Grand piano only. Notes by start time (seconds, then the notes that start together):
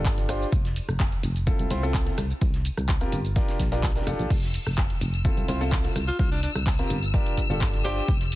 Already playing: D4 F4 G4 A4
0.29 D4 F4 G4 C5
1.47 C4 E4 F4 A4
1.71 C4 E4 F4 C5
1.83 C4 E4 F4 A4
2.07 C4 E4 F4 A4
3.01 C4 F4 G4 A#4
3.36 D4 F4 G4 A#4
3.72 D4 F4 G4 A#4
3.96 D4 F4 G4 A#4
4.07 D4 F4 G4 A4
5.25 C4 E4 F4 A4
5.48 C4 E4 F4 C5
5.61 C4 E4 F4 A4
5.85 C4 E4 F4 A4
6.79 C4 F4 G4 A#4
7.14 D4 F4 G4 A#4
7.50 D4 F4 G4 A4
7.85 D4 F4 G4 C5